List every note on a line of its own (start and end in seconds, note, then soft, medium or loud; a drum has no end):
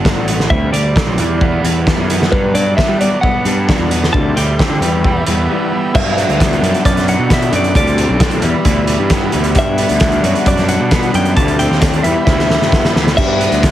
0.00 0.12 G1 medium
0.00 0.26 B3 medium
0.00 0.50 D4 medium
0.00 0.47 F#5 medium
0.04 0.49 F#3 medium
0.04 0.27 G3 medium
0.04 0.27 B3 medium
0.04 0.27 D4 medium
0.04 kick loud
0.04 snare loud
0.16 0.46 A1 medium
0.27 0.49 G3 medium
0.27 0.51 B3 medium
0.27 0.49 B3 medium
0.27 closed hi-hat medium
0.40 snare medium
0.49 0.70 D2 medium
0.49 0.71 D3 medium
0.49 0.72 G3 medium
0.49 0.71 A3 medium
0.49 0.73 C4 medium
0.49 0.72 E5 loud
0.49 kick loud
0.72 0.93 D2 medium
0.72 0.93 D3 medium
0.72 1.18 G3 medium
0.72 0.94 A3 medium
0.72 1.60 D5 medium
0.72 closed hi-hat loud
0.96 1.17 D3 medium
0.96 1.17 A3 medium
0.96 1.19 C4 medium
0.96 kick loud
0.96 snare loud
1.07 1.17 B1 medium
1.18 1.58 E2 medium
1.18 1.40 E3 medium
1.18 1.87 G3 medium
1.18 1.40 B3 medium
1.18 1.41 E4 medium
1.18 closed hi-hat medium
1.41 1.62 E3 medium
1.41 2.09 B3 medium
1.41 1.62 B3 medium
1.41 kick loud
1.63 1.93 E2 medium
1.63 1.85 E3 medium
1.63 1.85 B3 medium
1.63 2.33 E4 medium
1.63 closed hi-hat medium
1.87 2.08 E3 medium
1.87 2.31 G3 medium
1.87 2.09 B3 medium
1.87 2.09 E4 medium
1.87 kick loud
1.87 snare loud
1.97 2.27 F#2 medium
2.09 2.30 E3 medium
2.09 2.33 B3 medium
2.09 2.30 B3 medium
2.09 snare soft
2.09 closed hi-hat loud
2.22 snare medium
2.32 2.52 G2 medium
2.32 2.53 F#3 medium
2.32 2.54 G3 loud
2.32 2.54 B3 medium
2.32 2.54 D4 loud
2.32 4.12 D4 medium
2.32 4.13 A4 medium
2.32 2.53 B4 medium
2.32 4.13 B4 medium
2.32 4.13 F#5 medium
2.32 kick loud
2.54 2.74 G2 loud
2.54 2.99 F#3 medium
2.54 2.76 G3 medium
2.54 2.76 B3 medium
2.54 2.76 D5 medium
2.54 closed hi-hat medium
2.77 2.98 G3 medium
2.77 2.98 B3 medium
2.77 3.23 B3 medium
2.77 2.98 E5 medium
2.77 kick loud
2.77 snare loud
2.88 3.08 G3 medium
3.00 3.67 F#3 medium
3.00 3.21 G3 medium
3.00 3.21 B3 medium
3.00 3.21 D5 medium
3.00 closed hi-hat medium
3.21 3.44 G3 medium
3.21 3.44 B3 medium
3.21 3.90 B3 medium
3.21 4.09 F#5 medium
3.21 kick loud
3.45 3.75 G2 medium
3.45 3.66 G3 medium
3.45 3.66 B3 medium
3.45 4.14 D4 medium
3.45 closed hi-hat medium
3.68 4.14 F#3 medium
3.68 3.90 G3 medium
3.68 3.90 B3 medium
3.68 3.90 D4 medium
3.68 kick loud
3.68 snare loud
3.79 4.09 E2 medium
3.91 4.12 G3 medium
3.91 4.12 B3 medium
3.91 4.14 B3 medium
3.91 closed hi-hat medium
4.04 snare medium
4.13 4.34 D2 medium
4.13 4.35 D3 medium
4.13 4.82 D3 medium
4.13 4.35 G3 medium
4.13 4.35 A3 medium
4.13 4.35 C4 medium
4.13 4.82 D4 medium
4.13 4.82 E4 medium
4.13 4.82 C5 medium
4.13 4.82 G5 medium
4.13 4.36 A5 loud
4.13 kick loud
4.36 4.56 D2 loud
4.36 4.57 D3 medium
4.36 4.81 G3 medium
4.36 4.57 A3 medium
4.36 5.23 G5 medium
4.36 closed hi-hat medium
4.58 4.79 D3 medium
4.58 4.79 A3 medium
4.58 4.82 C4 medium
4.58 kick loud
4.58 snare loud
4.69 4.80 D3 medium
4.80 5.20 E2 loud
4.80 5.03 E3 medium
4.80 5.04 G3 medium
4.80 5.03 G3 medium
4.80 5.04 B3 medium
4.80 5.95 E4 medium
4.80 5.94 G4 medium
4.80 5.94 B5 medium
4.80 closed hi-hat medium
4.84 5.95 E3 medium
4.84 5.95 B4 medium
5.04 5.25 E3 medium
5.04 5.25 G3 medium
5.04 5.48 G3 medium
5.04 kick loud
5.27 5.46 E2 medium
5.27 5.48 E3 medium
5.27 5.48 G3 medium
5.27 5.95 B3 medium
5.27 closed hi-hat medium
5.50 5.71 E3 medium
5.50 5.71 G3 medium
5.50 5.72 B3 medium
5.72 5.92 E3 medium
5.72 5.93 G3 medium
5.72 5.94 G3 medium
5.93 6.38 G2 medium
5.93 6.24 G2 medium
5.93 6.39 D3 loud
5.93 6.17 F#3 loud
5.93 6.15 F#3 medium
5.93 6.16 B3 loud
5.93 6.15 D4 loud
5.93 6.85 E5 loud
5.93 kick loud
5.93 crash loud
5.97 7.75 F#3 medium
5.97 8.42 D5 medium
5.97 7.75 G5 medium
5.97 7.75 B5 medium
6.16 7.07 F#3 medium
6.16 6.39 F#3 medium
6.16 6.40 B3 medium
6.16 6.40 D4 medium
6.16 closed hi-hat medium
6.29 6.58 D2 medium
6.29 closed hi-hat soft
6.39 6.85 G2 loud
6.39 6.85 D3 loud
6.39 6.64 F#3 loud
6.39 6.83 B3 medium
6.39 6.63 B3 loud
6.39 6.61 D4 loud
6.39 kick loud
6.39 snare loud
6.39 closed hi-hat medium
6.53 closed hi-hat soft
6.61 6.72 F#2 medium
6.61 7.28 F#3 medium
6.61 7.29 B3 medium
6.61 7.75 D4 medium
6.61 7.30 D4 medium
6.61 closed hi-hat medium
6.74 closed hi-hat soft
6.85 7.14 F#2 medium
6.85 7.75 B3 medium
6.85 7.08 D5 medium
6.85 kick loud
6.85 closed hi-hat loud
6.97 snare soft
6.97 closed hi-hat soft
7.08 7.29 F#3 medium
7.08 7.31 F#5 loud
7.08 closed hi-hat medium
7.19 7.48 B2 medium
7.28 7.73 D3 medium
7.28 7.52 F#3 medium
7.28 7.51 F#3 medium
7.28 7.51 B3 medium
7.28 7.50 D4 medium
7.28 kick loud
7.28 snare loud
7.28 closed hi-hat loud
7.33 7.53 E5 loud
7.42 closed hi-hat soft
7.51 7.72 F#2 medium
7.51 7.74 F#3 medium
7.51 7.74 B3 medium
7.51 7.73 D4 medium
7.51 closed hi-hat medium
7.56 7.75 D5 medium
7.64 closed hi-hat soft
7.74 8.05 D2 loud
7.74 8.18 D3 loud
7.74 8.42 G3 medium
7.74 7.98 A3 medium
7.74 7.97 C4 medium
7.74 7.97 G4 loud
7.74 9.30 D5 medium
7.74 8.44 A5 medium
7.74 8.43 C6 medium
7.74 kick loud
7.74 closed hi-hat medium
7.87 closed hi-hat soft
7.97 8.19 A3 medium
7.97 8.43 C4 medium
7.97 8.19 C4 medium
7.97 8.21 G4 medium
7.97 closed hi-hat medium
8.09 8.38 B1 medium
8.19 8.41 D3 medium
8.19 8.41 A3 loud
8.19 8.42 C4 loud
8.19 8.43 D4 medium
8.19 8.42 G4 loud
8.19 kick loud
8.19 snare loud
8.19 closed hi-hat loud
8.31 closed hi-hat medium
8.42 8.52 E2 loud
8.42 9.09 E3 medium
8.42 8.88 G3 medium
8.42 9.10 B3 medium
8.42 9.10 E4 medium
8.42 9.12 G4 medium
8.42 9.55 B4 medium
8.42 9.55 E5 medium
8.42 9.55 B5 medium
8.42 closed hi-hat medium
8.65 8.95 D2 loud
8.65 9.56 E4 medium
8.65 kick loud
8.65 closed hi-hat loud
8.87 9.32 G3 medium
8.87 closed hi-hat medium
8.99 9.29 G2 medium
9.10 9.54 E3 medium
9.10 9.56 B3 medium
9.10 9.33 B3 medium
9.10 9.32 E4 medium
9.10 9.32 G4 medium
9.10 kick loud
9.10 snare loud
9.10 closed hi-hat loud
9.32 9.53 D2 medium
9.32 10.26 G3 medium
9.32 9.55 B3 medium
9.32 9.55 E4 medium
9.32 9.57 G4 medium
9.32 closed hi-hat medium
9.44 closed hi-hat soft
9.55 9.85 G2 medium
9.55 10.00 G3 loud
9.55 9.79 B3 loud
9.55 9.78 D4 loud
9.55 9.76 F#4 loud
9.55 12.03 D5 medium
9.55 10.44 E5 medium
9.55 11.36 F#5 medium
9.55 11.35 B5 medium
9.55 kick loud
9.55 closed hi-hat loud
9.77 10.90 B3 medium
9.77 10.00 B3 medium
9.77 10.01 D4 medium
9.77 10.02 F#4 medium
9.77 closed hi-hat medium
9.89 10.19 D2 medium
9.89 closed hi-hat soft
10.00 10.91 G3 loud
10.00 10.25 B3 medium
10.00 10.44 D4 medium
10.00 10.23 D4 loud
10.00 10.23 F#4 loud
10.00 kick loud
10.00 snare loud
10.00 closed hi-hat medium
10.12 closed hi-hat soft
10.23 10.33 F#2 loud
10.23 10.92 B3 medium
10.23 10.92 D4 medium
10.23 11.37 F#4 medium
10.23 10.92 F#4 medium
10.23 closed hi-hat medium
10.35 closed hi-hat soft
10.45 10.76 F#2 medium
10.45 11.36 D4 medium
10.45 10.68 D5 medium
10.45 kick loud
10.45 closed hi-hat medium
10.57 snare soft
10.57 closed hi-hat soft
10.69 11.11 F#5 medium
10.69 closed hi-hat medium
10.80 11.10 B2 medium
10.91 11.35 G3 medium
10.91 11.37 B3 medium
10.91 11.15 B3 medium
10.91 11.14 D4 medium
10.91 11.12 F#4 medium
10.91 kick loud
10.91 snare loud
10.91 closed hi-hat medium
11.03 closed hi-hat soft
11.13 11.34 F#2 medium
11.13 11.36 F#3 medium
11.13 11.36 B3 medium
11.13 11.36 D4 medium
11.13 11.35 F#4 medium
11.13 11.36 G5 medium
11.13 closed hi-hat medium
11.25 closed hi-hat soft
11.35 11.66 D2 medium
11.35 11.80 D3 medium
11.35 12.03 G3 medium
11.35 11.60 A3 loud
11.35 11.59 C4 medium
11.35 11.58 G4 loud
11.35 11.59 A5 loud
11.35 12.05 A5 medium
11.35 12.05 C6 medium
11.35 kick loud
11.35 closed hi-hat medium
11.48 closed hi-hat soft
11.59 11.81 A3 medium
11.59 12.05 C4 medium
11.59 11.81 C4 medium
11.59 11.82 G4 medium
11.59 12.01 G5 loud
11.59 closed hi-hat medium
11.70 12.00 D#2 medium
11.70 snare soft
11.81 12.03 D3 loud
11.81 12.03 A3 loud
11.81 12.03 C4 loud
11.81 12.04 D4 medium
11.81 12.04 G4 loud
11.81 kick loud
11.81 snare loud
11.81 closed hi-hat loud
11.93 closed hi-hat soft
12.03 12.14 E2 medium
12.03 12.71 E3 medium
12.03 12.49 G3 medium
12.03 12.72 B3 medium
12.03 13.17 E4 medium
12.03 12.73 E4 medium
12.03 12.74 G4 medium
12.03 13.17 B4 medium
12.03 12.24 E5 loud
12.03 13.17 G5 medium
12.03 13.71 B5 medium
12.03 closed hi-hat medium
12.25 12.57 D2 medium
12.25 13.17 E4 medium
12.25 12.90 E5 medium
12.25 kick loud
12.25 snare medium
12.39 snare medium
12.49 12.94 G3 medium
12.49 snare medium
12.61 12.91 G2 medium
12.61 snare medium
12.72 13.16 E3 medium
12.72 13.18 B3 medium
12.72 12.95 B3 medium
12.72 12.94 E4 medium
12.72 12.94 G4 medium
12.72 kick loud
12.72 snare medium
12.85 snare medium
12.94 13.14 D2 medium
12.94 13.71 G3 medium
12.94 13.16 B3 medium
12.94 13.17 E4 medium
12.94 13.19 G4 medium
12.94 snare medium
13.07 snare medium
13.17 13.47 G2 loud
13.17 13.62 G3 medium
13.17 13.40 B3 loud
13.17 13.39 D4 loud
13.17 13.38 F#4 loud
13.17 13.71 D5 medium
13.17 13.71 E5 medium
13.17 13.71 F#5 medium
13.17 kick loud
13.17 crash loud
13.39 13.71 B3 medium
13.39 13.61 B3 medium
13.39 13.62 D4 medium
13.39 13.63 F#4 medium
13.39 closed hi-hat medium
13.52 13.71 D2 medium
13.52 closed hi-hat soft
13.62 13.71 G3 medium
13.62 13.71 B3 loud
13.62 13.71 D4 medium
13.62 13.71 D4 loud
13.62 13.71 F#4 loud
13.62 kick loud
13.62 snare loud
13.62 closed hi-hat loud